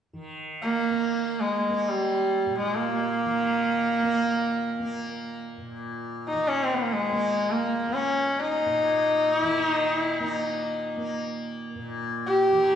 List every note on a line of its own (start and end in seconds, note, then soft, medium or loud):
0.13 3.24 D#3 soft
0.62 1.42 A#3 medium
0.90 1.69 A#3 soft
1.40 1.79 G#3 medium
1.69 4.03 A#3 medium
1.79 1.90 G#3 soft
1.88 2.57 G3 medium
2.46 5.57 A#2 soft
2.57 2.77 G#3 medium
2.75 5.41 A#3 medium
3.25 6.33 D#3 soft
4.03 4.79 A#3 soft
4.79 7.12 A#3 soft
5.58 8.65 A#2 soft
6.28 6.49 D#4 medium
6.33 9.42 D#3 soft
6.47 6.65 C#4 medium
6.63 6.78 C4 medium
6.76 6.94 A#3 medium
6.93 7.53 G#3 medium
7.12 7.88 A#3 medium
7.52 7.94 A#3 medium
7.88 10.20 A#3 soft
7.93 8.41 C#4 medium
8.40 9.40 D#4 medium
8.66 11.75 A#2 medium
9.40 12.52 D#3 medium
9.40 9.67 E4 medium
9.67 9.96 D#4 medium
9.96 10.23 E4 medium
10.20 10.97 A#3 medium
10.20 11.22 D#4 medium
10.97 12.75 A#3 soft
11.75 12.75 A#2 soft
12.27 12.75 G4 medium
12.52 12.75 D#3 medium